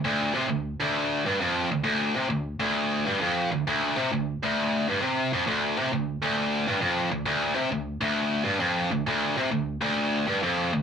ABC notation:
X:1
M:4/4
L:1/8
Q:"Swing" 1/4=133
K:Dm
V:1 name="Distorted electric guitar" clef=bass
D,, C, D,, D,,2 G,, F,, D,, | D,, C, D,, D,,2 G,, F,, D,, | D,, C, D,, D,,2 G,, C, F,, | D,, C, D,, D,,2 G,, F,, D,, |
D,, C, D,, D,,2 G,, F,, D,, | D,, C, D,, D,,2 G,, F,, D,, |]